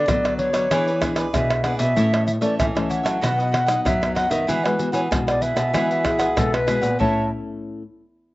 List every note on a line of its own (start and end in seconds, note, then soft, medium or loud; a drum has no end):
0.00 0.22 B4 medium
0.00 0.21 D5 medium
0.00 0.34 D5 loud
0.07 0.67 D3 medium
0.07 0.48 F#3 medium
0.07 0.65 B3 medium
0.07 0.66 F#4 medium
0.07 pandeiro medium
0.07 tamborim medium
0.07 shaker medium
0.07 surdo loud
0.24 0.38 B4 soft
0.24 0.38 C#5 soft
0.24 0.38 D5 soft
0.24 pandeiro soft
0.24 tamborim medium
0.24 shaker soft
0.38 0.53 D4 soft
0.38 0.53 B4 soft
0.38 1.02 C#5 medium
0.38 0.53 C#5 soft
0.38 0.52 D5 soft
0.38 pandeiro medium
0.53 0.67 F#3 medium
0.53 0.69 B4 medium
0.53 0.69 C#5 medium
0.53 0.68 D5 medium
0.53 pandeiro medium
0.53 tamborim medium
0.53 shaker medium
0.70 1.30 E3 medium
0.70 0.89 B3 medium
0.70 0.89 D4 soft
0.70 0.85 E4 medium
0.70 0.85 G#4 medium
0.70 0.89 G#4 medium
0.70 0.86 B4 medium
0.70 0.86 D5 medium
0.70 pandeiro medium
0.70 tamborim medium
0.70 shaker medium
0.70 surdo medium
0.87 1.00 G#4 soft
0.87 1.01 B4 soft
0.87 1.01 D5 soft
0.87 pandeiro soft
0.87 shaker soft
1.01 1.28 B3 medium
1.01 1.28 D4 medium
1.01 1.16 E4 soft
1.01 1.16 G#4 soft
1.01 1.28 G#4 medium
1.01 1.15 B4 medium
1.01 1.14 D5 medium
1.01 pandeiro medium
1.01 tamborim medium
1.01 shaker medium
1.01 surdo medium
1.16 1.48 G#4 medium
1.16 1.47 B4 medium
1.16 1.47 D5 medium
1.16 pandeiro medium
1.16 tamborim medium
1.16 shaker medium
1.33 1.93 B2 medium
1.33 1.60 B3 medium
1.33 1.60 D4 medium
1.33 1.60 G#4 medium
1.33 1.65 E5 medium
1.33 pandeiro medium
1.33 tamborim medium
1.33 shaker medium
1.33 surdo medium
1.50 muted cavaquinho stroke soft
1.50 pandeiro soft
1.50 tamborim medium
1.50 shaker soft
1.64 1.85 B3 medium
1.64 1.85 D4 medium
1.64 1.79 E4 medium
1.64 1.79 G#4 medium
1.64 1.85 G#4 medium
1.64 1.78 B4 medium
1.64 1.77 D5 medium
1.64 1.78 F#5 medium
1.64 pandeiro medium
1.64 tamborim medium
1.78 1.93 B2 medium
1.78 1.95 G#4 soft
1.78 1.95 B4 medium
1.78 1.94 D5 soft
1.78 2.23 E5 medium
1.78 pandeiro medium
1.78 shaker medium
1.96 2.56 A2 medium
1.96 2.26 E3 medium
1.96 2.26 A3 medium
1.96 2.26 C#4 medium
1.96 2.11 E4 medium
1.96 2.11 A4 medium
1.96 2.12 C#5 medium
1.96 2.12 E5 medium
1.96 pandeiro medium
1.96 shaker medium
1.96 surdo medium
2.13 2.26 A4 soft
2.13 2.26 C#5 soft
2.13 2.26 E5 soft
2.13 pandeiro soft
2.13 tamborim medium
2.13 shaker soft
2.26 2.32 E5 medium
2.26 muted cavaquinho stroke soft
2.26 pandeiro medium
2.26 shaker medium
2.41 2.58 E3 medium
2.41 2.69 A3 medium
2.41 2.69 C#4 medium
2.41 2.73 A4 medium
2.41 2.73 C#5 medium
2.41 2.57 D5 medium
2.41 2.72 E5 medium
2.41 pandeiro medium
2.41 shaker medium
2.59 2.74 E3 medium
2.59 2.66 E5 medium
2.59 pandeiro medium
2.59 tamborim medium
2.59 shaker medium
2.59 surdo loud
2.75 3.17 E3 medium
2.75 3.18 A3 medium
2.75 3.18 C#4 medium
2.75 2.88 A4 soft
2.75 2.89 C#5 soft
2.75 2.90 E5 soft
2.75 pandeiro soft
2.75 tamborim medium
2.75 shaker soft
2.89 3.04 E4 soft
2.89 3.04 A4 soft
2.89 3.03 C#5 soft
2.89 3.02 E5 soft
2.89 3.81 F#5 medium
2.89 pandeiro medium
2.89 shaker medium
3.03 3.19 F#3 medium
3.03 3.20 A4 medium
3.03 3.20 C#5 medium
3.03 3.19 E5 medium
3.03 pandeiro medium
3.03 tamborim medium
3.03 shaker medium
3.21 3.82 B2 medium
3.21 3.52 F#3 medium
3.21 3.52 B3 soft
3.21 3.52 D#4 medium
3.21 3.36 F#4 medium
3.21 3.37 B4 medium
3.21 3.37 D#5 medium
3.21 3.37 F#5 medium
3.21 pandeiro medium
3.21 tamborim medium
3.21 shaker medium
3.21 surdo medium
3.38 3.51 B4 soft
3.38 3.51 D#5 soft
3.38 3.52 F#5 soft
3.38 pandeiro soft
3.38 shaker soft
3.51 3.67 F#4 medium
3.51 3.67 B4 soft
3.51 3.66 D#5 soft
3.51 3.65 F#5 medium
3.51 pandeiro medium
3.51 tamborim medium
3.66 3.95 F#3 medium
3.66 3.95 B3 medium
3.66 3.95 D#4 medium
3.66 3.99 B4 medium
3.66 3.99 D#5 medium
3.66 3.98 F#5 medium
3.66 pandeiro medium
3.66 tamborim medium
3.66 shaker medium
3.85 4.45 F#2 medium
3.85 4.25 F#3 medium
3.85 4.14 E5 medium
3.85 pandeiro medium
3.85 tamborim medium
3.85 shaker medium
3.85 surdo loud
4.01 4.43 F#3 medium
4.01 4.44 B3 medium
4.01 4.44 D#4 medium
4.01 muted cavaquinho stroke soft
4.01 pandeiro soft
4.01 tamborim medium
4.01 shaker soft
4.15 4.30 F#4 medium
4.15 4.31 B4 medium
4.15 4.30 D#5 medium
4.15 4.32 F#5 medium
4.15 4.29 F#5 medium
4.15 pandeiro medium
4.15 tamborim medium
4.30 4.45 D#3 medium
4.30 4.47 B4 soft
4.30 4.46 D#5 medium
4.30 4.66 E5 medium
4.30 4.46 F#5 soft
4.30 pandeiro medium
4.30 shaker medium
4.47 5.08 E3 medium
4.47 4.58 G#3 soft
4.47 4.58 B3 medium
4.47 4.62 E4 medium
4.47 4.58 F#4 medium
4.47 4.63 G#4 medium
4.47 4.63 B4 medium
4.47 4.62 F#5 medium
4.47 pandeiro medium
4.47 shaker medium
4.47 surdo medium
4.63 4.75 G#3 medium
4.63 4.75 B3 medium
4.63 4.76 F#4 medium
4.63 4.78 G#4 soft
4.63 4.78 B4 soft
4.63 4.93 B4 medium
4.63 4.78 F#5 soft
4.63 pandeiro soft
4.63 tamborim medium
4.63 shaker soft
4.78 5.06 G#3 medium
4.78 5.06 B3 soft
4.78 5.06 F#4 medium
4.78 muted cavaquinho stroke soft
4.78 pandeiro medium
4.78 shaker medium
4.92 5.08 E3 medium
4.92 5.25 G#4 medium
4.92 5.24 B4 medium
4.92 5.01 C#5 medium
4.92 5.24 F#5 medium
4.92 pandeiro medium
4.92 shaker medium
5.11 5.71 B2 medium
5.11 5.69 G#3 medium
5.11 5.69 B3 medium
5.11 5.69 F#4 medium
5.11 pandeiro medium
5.11 tamborim medium
5.11 shaker medium
5.11 surdo loud
5.27 5.41 G#4 soft
5.27 5.41 B4 soft
5.27 5.43 D5 medium
5.27 5.41 F#5 soft
5.27 pandeiro soft
5.27 tamborim medium
5.27 shaker soft
5.41 5.56 E4 soft
5.41 5.56 G#4 soft
5.41 5.56 B4 soft
5.41 6.68 E5 medium
5.41 5.55 F#5 soft
5.41 pandeiro medium
5.41 shaker medium
5.56 5.71 B2 medium
5.56 5.72 G#4 soft
5.56 5.72 B4 medium
5.56 5.72 F#5 medium
5.56 pandeiro medium
5.56 tamborim medium
5.56 shaker medium
5.74 6.34 E3 soft
5.74 6.32 G#3 soft
5.74 6.32 B3 medium
5.74 5.89 E4 medium
5.74 6.32 F#4 medium
5.74 5.89 G#4 medium
5.74 5.89 B4 medium
5.74 5.89 F#5 medium
5.74 pandeiro medium
5.74 tamborim medium
5.74 shaker medium
5.74 surdo medium
5.90 6.04 G#4 soft
5.90 6.04 B4 soft
5.90 6.05 F#5 soft
5.90 pandeiro soft
5.90 shaker soft
6.04 6.19 E4 soft
6.04 6.19 G#4 soft
6.04 6.39 G#4 medium
6.04 6.18 B4 soft
6.04 6.17 F#5 soft
6.04 pandeiro medium
6.04 tamborim medium
6.04 shaker medium
6.04 surdo medium
6.19 6.51 G#4 medium
6.19 6.51 B4 medium
6.19 6.50 F#5 medium
6.19 pandeiro medium
6.19 tamborim medium
6.19 shaker medium
6.36 6.97 B2 medium
6.36 6.55 G#3 medium
6.36 6.56 B3 medium
6.36 6.56 F#4 medium
6.36 6.55 A4 medium
6.36 pandeiro medium
6.36 tamborim medium
6.36 shaker medium
6.36 surdo loud
6.53 6.99 B4 medium
6.53 muted cavaquinho stroke soft
6.53 pandeiro soft
6.53 tamborim medium
6.53 shaker soft
6.67 6.88 G#3 soft
6.67 6.88 B3 medium
6.67 6.82 E4 medium
6.67 6.88 F#4 medium
6.67 6.82 G#4 medium
6.67 6.81 B4 medium
6.67 6.80 F#5 medium
6.67 pandeiro medium
6.67 tamborim medium
6.67 shaker medium
6.81 6.96 A#2 medium
6.81 6.98 G#4 soft
6.81 6.98 B4 soft
6.81 6.97 F#5 soft
6.81 pandeiro medium
6.81 shaker medium
6.99 7.82 A2 medium
6.99 7.82 A3 medium
6.99 7.82 C#4 medium
6.99 7.25 E4 medium
6.99 7.82 E4 medium
6.99 7.25 A4 medium
6.99 7.29 C#5 medium
6.99 7.25 C#5 medium
6.99 7.25 E5 medium
6.99 7.29 A5 medium
6.99 surdo medium